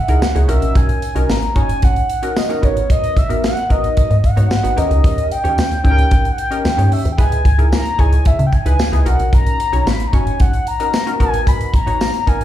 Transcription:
Already playing: F#5
0.08 C#2 D#4 E4 G#4 A#4, closed hi-hat
0.22 snare, tambourine
0.35 C#2 D#4 E4 G#4 C#5, closed hi-hat
0.48 B1 C#4 D#4 F#4 A#4 E5, closed hi-hat
0.62 A#1, closed hi-hat
0.75 B1 G#5, kick, closed hi-hat
0.89 closed hi-hat
1.02 closed hi-hat
1.15 B1 C#4 D#4 F#4 A#4, closed hi-hat
1.29 G#1 A#5, snare, tambourine
1.42 closed hi-hat
1.55 F#1 C#4 D#4 F#4 C#5 G#5, kick, closed hi-hat
1.69 closed hi-hat
1.82 A#1 F#5, kick, closed hi-hat
1.96 closed hi-hat
2.10 closed hi-hat
2.22 C#4 D#4 F#4 A#4, closed hi-hat
2.36 D#5, snare, tambourine
2.49 C#4 D#4 F#4 A#4, closed hi-hat
2.62 G#1 B3 D#4 F#4 A#4 C#5, kick, closed hi-hat
2.77 closed hi-hat
2.90 D#5, kick, closed hi-hat
3.04 closed hi-hat
3.17 G#1 E5, kick, closed hi-hat
3.29 B3 D#4 F#4 A#4, closed hi-hat
3.44 F#5, snare, tambourine
3.57 closed hi-hat
3.69 G#1 B3 D#4 F#4 A#4 D#5, kick, closed hi-hat
3.84 closed hi-hat
3.97 G#2, kick, closed hi-hat
4.11 G#2, closed hi-hat
4.24 F#5, kick, closed hi-hat
4.36 G#2 B3 D#4 F#4 C#5, closed hi-hat
4.51 snare, tambourine
4.63 G#1 B3 D#4 F#4 B4, closed hi-hat
4.76 D#2 C#4 D#4 G4 A#4 D#5, closed hi-hat
4.91 C#2, closed hi-hat
5.04 D#2, kick, closed hi-hat
5.18 closed hi-hat
5.32 G5, closed hi-hat
5.44 D#2 C#4 D#4 G4 C#5, closed hi-hat
5.58 D#2, snare, tambourine
5.71 closed hi-hat
5.84 C#2 C#4 D#4 G4 A4 G5, kick, closed hi-hat
5.91 A#4
5.98 closed hi-hat
6.11 A#1, kick, closed hi-hat
6.25 closed hi-hat
6.32 F#5
6.38 G5, closed hi-hat
6.51 C#4 D#4 G4 A#4, closed hi-hat
6.65 D#2, snare, tambourine
6.77 G2 C#4 D#4 G4 C#5, closed hi-hat
6.92 E5, open hi-hat
7.05 D#2, closed hi-hat
7.12 G5
7.18 C#2 D#4 E4 G#4 B4 G#5, kick, closed hi-hat
7.32 closed hi-hat
7.45 C#2, kick, closed hi-hat
7.58 D#4 E4 G#4 A#4, closed hi-hat
7.72 A#5, snare, tambourine
7.85 closed hi-hat
7.98 C#2 D#4 E4 G#4 C#5 G#5, kick, closed hi-hat
8.12 closed hi-hat
8.25 C#3 E5, kick, closed hi-hat
8.39 C#3, closed hi-hat
8.47 G5
8.53 G#5, kick, closed hi-hat
8.65 C#2 D#4 E4 G#4 B4, closed hi-hat
8.79 snare, tambourine
8.92 C#2 D#4 E4 G#4 B4, closed hi-hat
9.05 B1 C#4 D#4 F#4 A#4 F#5, closed hi-hat
9.19 A#1, closed hi-hat
9.33 B1 A#5, kick, closed hi-hat
9.46 closed hi-hat
9.60 closed hi-hat
9.72 B1 C#4 D#4 F#4 C#5, closed hi-hat
9.86 G#1 B5, snare, tambourine
10.00 closed hi-hat
10.07 A#5
10.13 F#1 C#4 D#4 F#4 C#5 G#5, kick, closed hi-hat
10.27 closed hi-hat
10.40 A#1 F#5, kick, closed hi-hat
10.54 closed hi-hat
10.67 A#5, closed hi-hat
10.80 C#4 D#4 F#4 A#4, closed hi-hat
10.93 snare, tambourine
11.06 C#4 D#4 F#4 A#4, closed hi-hat
11.20 G#1 B3 D#4 F#4 A#4 G#5, kick, closed hi-hat
11.34 closed hi-hat
11.47 B5, kick, closed hi-hat
11.61 closed hi-hat
11.68 B5
11.74 G#1 A#5, kick, closed hi-hat
11.86 B3 D#4 F#4 C#5, closed hi-hat
12.01 snare, tambourine
12.14 closed hi-hat
12.27 G#1 B3 D#4 F#4 A#4 G#5, kick, closed hi-hat
12.41 closed hi-hat

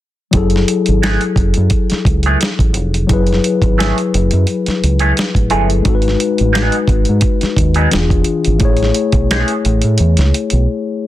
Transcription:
0.31 F#1 F#3 E4 G#4, kick, closed hi-hat
0.37 A4
0.50 closed hi-hat
0.56 snare
0.68 closed hi-hat
0.86 G#1, closed hi-hat
1.03 E3 A3 C#4 G#4, snare, closed hi-hat
1.21 closed hi-hat
1.36 F#1, kick, closed hi-hat
1.54 F#2, closed hi-hat
1.70 kick, closed hi-hat
1.90 muted fingered electric bass stroke, snare, closed hi-hat
2.05 C#2, kick, closed hi-hat
2.23 C#4 G#4, closed hi-hat
2.27 E3 A3
2.41 snare, closed hi-hat
2.59 A1, kick, closed hi-hat
2.74 F1, closed hi-hat
2.94 closed hi-hat
3.07 F#1 F#3 E4, kick, closed hi-hat
3.11 G#4 B4
3.27 closed hi-hat
3.33 snare
3.44 closed hi-hat
3.62 G#1, kick, closed hi-hat
3.78 E3 A3 C#4 G#4, snare, closed hi-hat
3.98 closed hi-hat
4.14 F#1, closed hi-hat
4.31 F#2, closed hi-hat
4.47 closed hi-hat
4.66 muted fingered electric bass stroke, snare, closed hi-hat
4.84 C#2, closed hi-hat
4.99 E3 A3 C#4 G#4, closed hi-hat
5.16 muted clean electric guitar stroke, snare, closed hi-hat
5.35 A1, kick, closed hi-hat
5.50 G1 E3 F#3 A3 C#4 E4 G#4 A4, closed hi-hat
5.70 closed hi-hat
5.83 G#1 G#3 D#4 F#4, kick, closed hi-hat
5.89 A4
5.95 B4
6.02 closed hi-hat
6.08 snare
6.20 closed hi-hat
6.38 A1, closed hi-hat
6.53 F#3 B3 D#4 G#4, snare, closed hi-hat
6.72 closed hi-hat
6.88 G#1, kick, closed hi-hat
7.05 G#2, closed hi-hat
7.21 kick, closed hi-hat
7.41 muted fingered electric bass stroke, snare, closed hi-hat
7.57 D#2, kick, closed hi-hat
7.74 F#3 B3 D#4 G#4, closed hi-hat
7.91 E1 E3 D4 F4 G#4, snare, closed hi-hat
8.10 kick, closed hi-hat
8.24 closed hi-hat
8.45 G#1, closed hi-hat
8.59 A1 A3 E4, kick, closed hi-hat
8.63 G#4 C#5
8.77 closed hi-hat
8.83 snare
8.94 closed hi-hat
9.12 B1, kick, closed hi-hat
9.31 E3 A3 C#4 G#4, snare, closed hi-hat
9.48 closed hi-hat
9.65 A1, closed hi-hat
9.82 A2, closed hi-hat
9.98 E2, closed hi-hat
10.17 C#2, snare, closed hi-hat
10.34 closed hi-hat
10.50 B1, closed hi-hat

